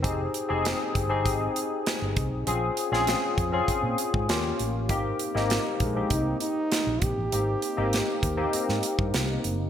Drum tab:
HH |x-x-x-x-x-x-x-x-|x-x-x-x-x-x-x-x-|x-x-x-x-x-x-x-x-|x-x-x-x-x-x-x-x-|
SD |----o-------o---|---oo-------o---|---oo-------o---|----o----o--o---|
BD |o-----o-o-----o-|------o-o--o----|o-----o-o-----o-|------o----o----|